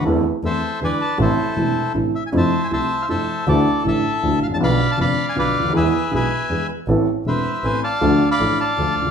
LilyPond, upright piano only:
\new Staff \with { instrumentName = "Upright piano" } { \clef bass \time 3/4 \key a \minor \tempo 4 = 158 <e, e a c' a'>8 r8 <e, e a c' a'>8 r8 <e, d e gis b e'>8 r8 | <a,, a, c e a e'>8 r8 <e,, e, c e a e'>8 r8 <a,, a, c e a e'>8 r8 | <f, c f a e'>8 r8 <c, c f a e'>8 r8 <f, c f a e'>8 r8 | <d, d e a e'>8 r8 <a,, a, d e a e'>8 r8 <d, d e a e'>8 r32 gis,,32 a,,32 bes,,32 |
<b,, b, d f b f'>8 r8 <f,, f, d f b f'>8 r8 <b,, b, d f b f'>8 r32 cis,32 d,32 dis,32 | <e, e gis b gis'>8 r8 <b,, b, e gis b gis'>8 r8 <e, e gis b gis'>8 r8 | <a,, a, e b c' a'>8 r8 <e,, e, e b c' a'>8 r8 <a,, a, e b c' a'>8 r8 | <d, d f a d' a'>8 r8 <a,, a, f a d' a'>8 r8 <d, d f a d' a'>8 r32 cis,32 d,32 r32 | }